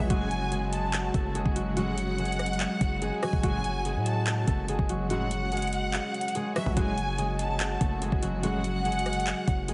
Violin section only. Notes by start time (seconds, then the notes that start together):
0.10 G#5
0.73 A5
1.77 F#5
3.23 G#5
3.43 G#5
4.06 A5
5.10 F#5
6.56 E5
6.77 G#5
7.39 A5
8.43 F#5